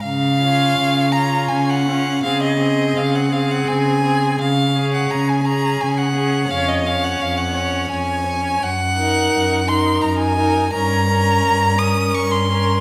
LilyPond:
<<
  \new Staff \with { instrumentName = "Violin" } { \time 3/4 \key des \major \tempo 4 = 84 f''4. bes''8 aes''16 ges''8. | f''16 ees''8. f''16 ges''16 f''16 ges''16 aes''4 | f''8. ges''16 bes''16 aes''16 bes''8 aes''16 ges''8. | f''16 ees''16 f''16 ges''16 f''16 ges''8. aes''4 |
ges''4. c'''8 bes''16 aes''8. | bes''4. ees'''8 des'''16 c'''8. | }
  \new Staff \with { instrumentName = "Violin" } { \time 3/4 \key des \major r8 f'4 f'4 f'8 | aes'8 aes'4 aes'4 aes'8 | r8 aes'4 aes'4 aes'8 | des''8 des''4 des''4 des''8 |
r8 bes'4 bes'4 bes'8 | bes'8 bes'4 bes'4 bes'8 | }
  \new Staff \with { instrumentName = "Viola" } { \time 3/4 \key des \major r8 des'4 des'4 des'8 | c'8 c'4 c'4 c'8 | r8 des'4 des'4 des'8 | des'8 des'4 des'4 des'8 |
r8 ees'4 ees'4 ees'8 | des'8 des'4 des'4 des'8 | }
  \new Staff \with { instrumentName = "Cello" } { \clef bass \time 3/4 \key des \major des4 des4 des4 | des4 des4 des4 | des4 des4 des4 | f,4 f,4 f,4 |
ges,4 ges,4 ges,4 | g,4 g,4 g,4 | }
>>